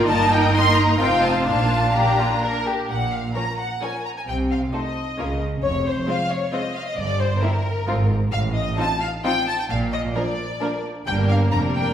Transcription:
0.07 0.95 G1 medium
0.07 0.96 A#3 medium
0.07 0.99 D#4 medium
0.07 0.95 D#4 medium
0.07 0.96 A#4 medium
0.07 0.96 D#5 medium
0.07 0.30 A5 medium
0.31 0.53 G5 medium
0.54 0.76 C6 loud
0.77 1.00 A#5 medium
0.99 1.46 F1 medium
0.99 1.46 C4 medium
0.99 1.45 D#4 medium
0.99 1.46 F4 medium
0.99 1.46 F5 medium
0.99 1.23 G5 medium
1.23 1.45 A5 medium
1.46 2.69 A#1 medium
1.46 1.93 A#3 medium
1.46 2.66 D4 medium
1.46 1.93 D4 medium
1.46 1.94 F4 medium
1.46 1.94 F5 medium
1.46 1.93 A5 medium
1.93 2.67 A#3 medium
1.93 2.67 D4 medium
1.93 2.16 G4 medium
1.93 2.66 A#5 medium
2.18 2.42 F4 medium
2.42 2.66 A#4 medium
2.66 2.89 G4 medium
2.89 3.28 A#1 soft
2.89 3.28 A#2 soft
2.89 3.11 F#5 medium
3.12 3.36 F5 medium
3.34 3.43 F3 soft
3.34 3.43 C#4 soft
3.34 3.42 A#4 soft
3.34 3.43 C#5 soft
3.34 3.58 A#5 medium
3.59 3.82 F#5 medium
3.82 3.90 F3 soft
3.82 3.90 C#4 soft
3.82 3.90 A#4 soft
3.82 3.90 C#5 soft
3.82 4.05 G#5 medium
4.06 4.10 A#5 medium
4.18 4.22 G#5 medium
4.28 4.66 C2 soft
4.28 4.65 C3 soft
4.28 4.37 G5 medium
4.51 4.59 F5 medium
4.73 4.81 A3 soft
4.73 4.81 D#4 soft
4.73 4.81 A4 soft
4.73 4.81 C5 soft
4.73 5.39 D#5 medium
5.18 5.55 C#2 soft
5.18 5.55 C#3 soft
5.18 5.26 A#3 soft
5.18 5.26 C#4 soft
5.18 5.27 F4 soft
5.18 5.27 A#4 soft
5.62 6.00 F1 medium
5.62 6.00 F2 medium
5.62 5.83 C#5 medium
5.86 6.08 C5 medium
6.07 6.15 G#3 soft
6.07 6.15 C4 soft
6.07 6.16 F4 soft
6.07 6.16 C5 soft
6.07 6.30 F5 medium
6.30 6.52 C#5 medium
6.52 6.61 G#3 soft
6.52 6.60 C4 soft
6.52 6.60 F4 soft
6.52 6.61 C5 soft
6.52 6.75 D#5 medium
6.75 6.86 F5 medium
6.87 6.98 D#5 medium
6.97 7.35 G1 medium
6.97 7.34 G2 medium
6.97 7.19 D5 medium
7.20 7.42 C5 medium
7.42 7.51 A#3 soft
7.42 7.50 E4 soft
7.42 7.50 E4 medium
7.42 7.50 G4 soft
7.42 8.10 A#4 medium
7.87 8.25 G#1 medium
7.87 8.25 G#2 medium
7.87 7.95 F3 soft
7.87 7.95 C4 soft
7.87 7.96 F4 medium
8.33 8.71 A1 medium
8.33 8.71 A2 medium
8.33 8.41 F5 medium
8.56 8.78 D#5 medium
8.78 8.86 F3 soft
8.78 8.87 C4 medium
8.78 8.86 D#4 medium
8.78 8.86 F4 medium
8.78 9.01 A5 medium
9.01 9.09 F5 medium
9.24 9.32 F3 medium
9.24 9.32 C4 soft
9.24 9.32 D#4 medium
9.24 9.32 F4 medium
9.24 9.47 G5 medium
9.47 9.58 A5 medium
9.60 9.64 G5 medium
9.70 10.07 A#1 medium
9.70 10.07 A#2 medium
9.70 9.78 F5 medium
9.93 10.01 D#5 medium
10.15 10.23 F3 medium
10.15 10.23 A#3 soft
10.15 10.23 D4 medium
10.15 10.23 A#4 medium
10.15 10.82 D5 medium
10.60 10.69 F3 medium
10.60 10.69 A#3 medium
10.60 10.68 D4 medium
10.60 10.68 A#4 medium
11.06 11.49 G1 medium
11.06 11.49 G2 medium
11.06 11.50 G3 soft
11.06 11.50 A#3 medium
11.06 11.50 D4 soft
11.06 11.50 A#4 medium
11.06 11.14 G5 medium
11.29 11.37 F5 medium
11.52 11.93 F1 medium
11.52 11.93 F2 medium
11.52 11.93 G3 soft
11.52 11.93 A#3 medium
11.52 11.93 D4 medium
11.52 11.93 A#4 medium
11.52 11.60 A#5 medium
11.76 11.93 G5 medium

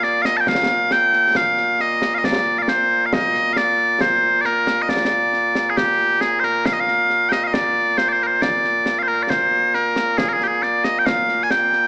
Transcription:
0.00 11.88 A#2 medium
0.00 11.88 A#3 medium
0.00 0.22 D5 loud
0.00 snare soft
0.22 0.37 D#5 loud
0.22 0.25 F5 loud
0.22 snare medium
0.37 0.48 G5 medium
0.37 0.41 A5 medium
0.47 0.92 F5 loud
0.47 concert bass drum medium
0.47 snare medium
0.91 1.37 G5 loud
0.91 snare medium
1.13 snare soft
1.35 1.81 F5 loud
1.35 concert bass drum medium
1.35 snare loud
1.57 snare soft
1.80 2.14 D#5 loud
1.80 snare soft
2.02 snare medium
2.14 2.25 D#5 medium
2.14 2.18 F5 medium
2.24 2.58 D5 loud
2.24 concert bass drum medium
2.24 snare loud
2.58 2.69 D5 medium
2.58 2.62 F5 medium
2.68 3.06 C5 loud
2.68 snare medium
3.06 3.13 F5 medium
3.13 3.53 D#5 loud
3.13 concert bass drum medium
3.13 snare loud
3.35 snare soft
3.53 3.57 F5 loud
3.53 snare medium
3.57 4.01 D5 loud
4.01 4.41 C5 medium
4.01 concert bass drum medium
4.01 snare loud
4.41 4.46 D5 medium
4.41 snare soft
4.46 4.82 A#4 medium
4.67 snare medium
4.82 4.89 D#5 medium
4.89 5.70 D5 loud
4.89 concert bass drum medium
4.89 snare medium
5.11 snare soft
5.33 snare soft
5.55 snare medium
5.70 5.77 G#4 medium
5.77 6.21 G4 medium
5.77 concert bass drum medium
5.77 snare medium
6.21 6.40 G#4 medium
6.21 snare medium
6.40 6.44 C5 medium
6.40 snare soft
6.44 6.66 A#4 medium
6.65 6.73 F5 medium
6.65 concert bass drum medium
6.65 snare loud
6.73 6.80 D#5 medium
6.80 7.29 F5 loud
6.88 snare soft
7.10 snare soft
7.29 7.44 D#5 loud
7.29 7.32 G5 loud
7.29 snare medium
7.44 7.54 D#5 medium
7.44 7.47 F5 medium
7.54 7.98 D5 loud
7.54 concert bass drum medium
7.54 snare medium
7.98 8.09 C5 loud
7.98 snare medium
8.09 8.23 C5 medium
8.09 8.13 D5 medium
8.23 8.26 A#4 medium
8.23 8.42 C5 medium
8.42 8.99 D5 loud
8.42 concert bass drum medium
8.42 snare medium
8.64 snare soft
8.86 snare medium
8.99 9.07 C5 medium
8.99 9.03 F5 medium
9.07 9.22 A#4 medium
9.22 9.30 D5 medium
9.30 9.74 C5 medium
9.30 concert bass drum medium
9.30 snare medium
9.74 10.18 A#4 medium
9.74 snare soft
9.96 snare medium
10.18 10.29 G#4 medium
10.18 concert bass drum medium
10.18 snare loud
10.29 10.33 A#4 medium
10.33 10.44 G#4 medium
10.41 10.48 G4 medium
10.41 snare soft
10.48 10.63 G#4 medium
10.63 10.84 D5 medium
10.63 snare soft
10.84 10.99 D#5 loud
10.84 snare medium
10.99 11.06 G5 medium
11.06 11.43 F5 loud
11.06 concert bass drum medium
11.06 snare loud
11.29 snare soft
11.43 11.51 G#5 medium
11.50 11.88 G5 loud
11.50 snare medium
11.73 snare soft

